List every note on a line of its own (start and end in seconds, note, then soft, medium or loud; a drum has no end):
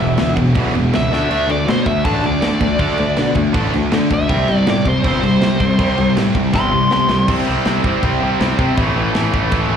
0.00 0.16 E1 medium
0.00 0.90 E2 medium
0.00 0.17 E2 medium
0.00 0.92 B2 medium
0.00 0.17 B2 medium
0.00 0.93 E3 medium
0.00 0.34 E5 medium
0.18 0.35 D2 medium
0.18 0.35 E2 medium
0.18 0.35 B2 medium
0.18 snare loud
0.18 crash medium
0.37 0.53 E1 medium
0.37 0.54 E2 medium
0.37 0.55 B2 medium
0.37 kick medium
0.37 crash medium
0.55 0.72 B1 medium
0.55 0.73 E2 medium
0.55 0.74 B2 medium
0.55 0.74 E3 loud
0.55 kick loud
0.55 crash medium
0.74 0.91 E1 medium
0.74 0.92 E2 medium
0.74 0.92 B2 medium
0.74 crash medium
0.93 1.09 C#2 loud
0.93 1.10 E2 medium
0.93 1.10 B2 medium
0.93 1.11 E3 medium
0.93 1.12 E5 medium
0.93 snare loud
0.93 crash medium
1.11 1.28 D2 medium
1.11 1.29 D3 medium
1.11 1.30 A3 medium
1.11 1.30 D4 loud
1.11 1.48 E5 loud
1.11 snare medium
1.30 1.46 D2 loud
1.30 1.48 D3 medium
1.30 1.48 A3 loud
1.30 1.49 D4 loud
1.30 crash medium
1.48 1.65 D2 medium
1.48 1.66 D3 medium
1.48 1.67 A3 medium
1.48 1.68 D5 loud
1.48 crash medium
1.66 1.83 B2 medium
1.66 1.84 D3 medium
1.66 1.85 A3 medium
1.66 snare loud
1.66 crash medium
1.70 1.87 C5 medium
1.86 2.03 D2 medium
1.86 2.03 D3 medium
1.86 2.04 A3 medium
1.86 2.04 E5 medium
1.86 kick medium
1.86 crash medium
2.05 2.21 A1 medium
2.05 2.22 D3 medium
2.05 2.23 A3 loud
2.05 2.23 D4 loud
2.05 2.23 A5 medium
2.05 kick loud
2.05 crash medium
2.23 2.40 D2 medium
2.23 2.41 D3 medium
2.23 2.41 A3 medium
2.23 3.34 D5 loud
2.23 crash medium
2.42 2.59 D3 medium
2.42 2.60 D3 medium
2.42 2.60 A3 medium
2.42 2.61 D4 medium
2.42 snare loud
2.42 crash medium
2.61 2.77 D2 medium
2.61 2.78 D3 medium
2.61 2.78 A3 medium
2.61 3.92 D4 loud
2.61 kick medium
2.61 crash medium
2.79 2.96 D2 medium
2.79 2.97 D3 medium
2.79 2.97 A3 loud
2.79 2.97 D4 loud
2.79 kick loud
2.79 crash medium
2.98 3.15 D2 loud
2.98 3.15 D3 medium
2.98 3.16 A3 medium
2.98 crash medium
3.17 3.34 B2 medium
3.17 3.35 D3 medium
3.17 3.35 A3 medium
3.17 snare loud
3.17 crash medium
3.35 3.52 D2 medium
3.35 3.53 D3 medium
3.35 3.53 A3 medium
3.35 kick medium
3.35 crash medium
3.54 3.71 A1 loud
3.54 3.72 D3 medium
3.54 3.72 A3 loud
3.54 3.73 D4 loud
3.54 kick loud
3.54 crash medium
3.74 3.90 D2 loud
3.74 3.91 D3 medium
3.74 3.91 A3 medium
3.74 crash medium
3.92 4.09 D3 medium
3.92 4.09 A3 medium
3.92 4.10 D4 loud
3.92 snare loud
3.92 crash medium
4.11 4.27 D2 medium
4.11 4.28 D3 medium
4.11 4.28 A3 medium
4.11 4.67 E5 loud
4.11 kick medium
4.11 crash medium
4.29 4.46 C2 loud
4.29 4.47 C3 medium
4.29 4.47 G3 loud
4.29 4.47 C4 loud
4.29 kick loud
4.29 crash medium
4.48 4.65 C2 loud
4.48 4.65 C3 medium
4.48 4.65 G3 medium
4.48 crash medium
4.67 4.84 A2 medium
4.67 4.84 C3 medium
4.67 4.84 G3 medium
4.67 4.86 D5 loud
4.67 snare loud
4.67 crash medium
4.85 5.02 C2 medium
4.85 5.02 C3 medium
4.85 5.03 G3 medium
4.85 5.05 C5 medium
4.85 kick medium
4.85 crash medium
5.03 5.21 G1 loud
5.03 5.21 C3 loud
5.03 5.21 G3 loud
5.03 5.22 C4 loud
5.03 kick loud
5.03 crash medium
5.08 6.15 C5 loud
5.23 5.40 C2 loud
5.23 5.40 C3 medium
5.23 5.40 G3 medium
5.23 crash medium
5.41 5.58 C3 loud
5.41 5.58 C3 medium
5.41 5.58 G3 medium
5.41 snare loud
5.41 crash medium
5.59 5.77 C2 loud
5.59 5.77 C3 medium
5.59 5.77 G3 medium
5.59 5.80 C4 medium
5.59 kick medium
5.59 crash medium
5.79 5.96 C2 medium
5.79 5.96 C3 loud
5.79 5.96 G3 loud
5.79 5.97 C4 loud
5.79 kick loud
5.79 crash medium
5.97 6.15 C2 loud
5.97 6.14 C3 medium
5.97 6.14 G3 medium
5.97 crash medium
6.16 6.34 A2 medium
6.16 6.33 C3 medium
6.16 6.33 G3 medium
6.16 snare loud
6.16 crash medium
6.35 6.52 C2 loud
6.35 6.52 C3 medium
6.35 6.52 G3 medium
6.35 kick medium
6.35 crash medium
6.53 6.70 G1 loud
6.53 6.70 C3 medium
6.53 6.70 G3 loud
6.53 6.72 C4 loud
6.53 6.91 C6 loud
6.53 kick loud
6.53 snare medium
6.71 6.89 C2 loud
6.71 6.89 C3 medium
6.71 6.89 G3 medium
6.90 7.08 C3 medium
6.90 7.08 C3 loud
6.90 7.08 G3 medium
6.90 7.28 C6 loud
6.90 snare medium
7.08 7.27 C2 medium
7.08 7.27 C3 medium
7.08 7.27 G3 medium
7.08 7.27 C4 medium
7.08 snare loud
7.28 7.41 C2 loud
7.28 7.46 C3 loud
7.28 7.47 G3 loud
7.28 7.47 C4 loud
7.28 kick loud
7.28 crash loud
7.28 crash medium
7.47 7.61 C2 loud
7.47 7.64 C3 medium
7.47 7.65 G3 loud
7.47 7.65 C4 loud
7.65 7.78 C2 medium
7.65 7.84 C3 loud
7.65 7.86 G3 loud
7.65 7.85 C4 loud
7.65 snare loud
7.65 crash medium
7.84 7.97 C2 medium
7.84 8.01 C3 medium
7.84 8.02 G3 medium
7.84 8.03 C4 loud
7.84 kick medium
8.03 8.15 C2 loud
8.03 8.20 C3 loud
8.03 8.21 G3 loud
8.03 8.22 C4 loud
8.03 kick loud
8.03 crash medium
8.21 8.34 C2 medium
8.21 8.38 C3 loud
8.21 8.39 G3 medium
8.21 8.39 C4 medium
8.39 8.53 C2 medium
8.39 8.57 C3 loud
8.39 8.58 G3 loud
8.39 8.58 C4 loud
8.39 snare loud
8.39 crash medium
8.58 8.76 C3 medium
8.58 8.71 C3 medium
8.58 8.77 G3 medium
8.58 8.77 C4 loud
8.58 kick medium
8.77 8.90 A1 loud
8.77 8.95 A2 loud
8.77 8.96 E3 loud
8.77 8.96 A3 loud
8.77 kick loud
8.77 crash medium
8.96 9.08 A1 loud
8.96 9.14 A2 medium
8.96 9.14 E3 loud
8.96 9.15 A3 loud
9.14 9.26 A1 medium
9.14 9.32 A2 loud
9.14 9.32 E3 loud
9.14 9.33 A3 loud
9.14 snare loud
9.14 crash medium
9.33 9.46 A1 medium
9.33 9.51 A2 medium
9.33 9.52 E3 loud
9.33 9.53 A3 loud
9.33 kick medium
9.51 9.65 A1 medium
9.51 9.71 A2 medium
9.51 9.72 E3 loud
9.51 9.72 A3 loud
9.51 kick loud
9.51 crash medium
9.70 9.77 A1 medium
9.70 9.77 A2 medium
9.70 9.77 E3 loud
9.70 9.77 A3 loud